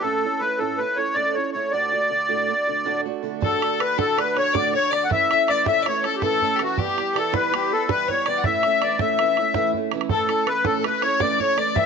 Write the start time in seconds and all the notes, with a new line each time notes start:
0.01 A2 A3 C#4 E4 A4
0.23 C#4 E4 A4
0.39 A3 C#4 E4 A4 B4
0.58 A2 A3 C#4 E4 A4
0.78 A3 C#4 E4 B4
0.82 A4
0.96 C#4 E4 A4 C#5
1.14 A2 A3 C#4 E4 A4 D5
1.34 C#4 E4 A4 C#5
1.52 A3 C#4 C#5
1.56 E4 A4
1.71 D2 A2 D3 A3 D4 F#4 D5
1.92 D3 A3 D4 F#4
2.10 D3 A3 D4 F#4
2.29 D2 A2 D3 A3 D4 F#4
2.49 D3 A3 D4 F#4
2.67 D3 A3 D4 F#4
2.85 D2 A2 D3 A3 D4 F#4
3.05 D3 A3 D4 F#4
3.22 D3 A3 D4 F#4
3.41 D2 A2 D3 A3 D4 F#4 A4, bodhran
3.62 D3 A3 D4 F#4, bodhran
3.79 D3 A3 D4 F#4 B4, bodhran
3.97 D2 A2 D3 A3 D4 F#4 A4, bodhran
4.17 D3 A3 D4 F#4 B4, bodhran
4.35 D3 A3 D4 F#4 C#5, bodhran
4.54 D2 A2 D3 A3 D4 F#4 D5, bodhran
4.73 D3 A3 D4 F#4 C#5
4.91 D3 A3 D4 F#4 D5, bodhran
5.04 F#5
5.09 A2 E3 A3 C#4 E4 E5, bodhran
5.30 A3 C#4 E4 E5, bodhran
5.48 E3 A3 C#4 E4 D5, bodhran
5.66 A2 E3 A3 C#4 E4 E5, bodhran
5.83 E3 C#5 D5, bodhran
5.87 A3 C#4 E4 C#5
6.04 A3 C#4 E4 A4, bodhran
6.16 G4
6.22 A2 E3 A3 C#4 E4 A4, bodhran
6.42 A3 C#4 E4, bodhran
6.56 G4, bodhran
6.60 E3 A3 C#4 E4 F#4
6.78 E3 G3 B3 E4 G4, bodhran
6.82 G4
6.97 G3 B3 E4, bodhran
7.14 E3 G3 B3 E4 A4, bodhran
7.19 A4
7.32 E3 G3 B3 E4 B4, bodhran
7.52 E3 G3 B3 E4 G4, bodhran
7.70 G3 B3 E4 A4
7.89 E3 G3 B3 E4 B4, bodhran
8.08 G3 B3 E4 C#5, bodhran
8.26 E3 G3 B3 E4 D5, bodhran
8.38 F#5
8.44 A2 E3 A3 C#4 E4 E5, bodhran
8.63 A3 C#4, bodhran
8.82 E3 A3 E4 D5, bodhran
8.99 A2 E3 A3 C#4 E4 E5, bodhran
9.19 E3 A3 C#4 E4, bodhran
9.37 A3 C#4 E4, bodhran
9.54 A2 E3 A3 C#4 E4, bodhran
9.74 A3 C#4 E4, bodhran
9.91 E3 A3 C#4 E4, bodhran
10.01 bodhran
10.09 A2 E3 A3 C#4 E4 A4, bodhran
10.28 A3 C#4 E4 A4, bodhran
10.46 E3 A3 C#4 E4 B4, bodhran
10.65 A2 E3 A3 C#4 E4 A4, bodhran
10.79 A4
10.84 E3 A3 C#4 E4 B4, bodhran
11.02 A3 C#4 E4 C#5, bodhran
11.20 A2 E3 A3 C#4 E4 D5, bodhran
11.39 A3 C#4 E4 C#5, bodhran
11.56 E3 A3 C#4 E4 D5, bodhran
11.74 G3 B3 E4 G4 E5, bodhran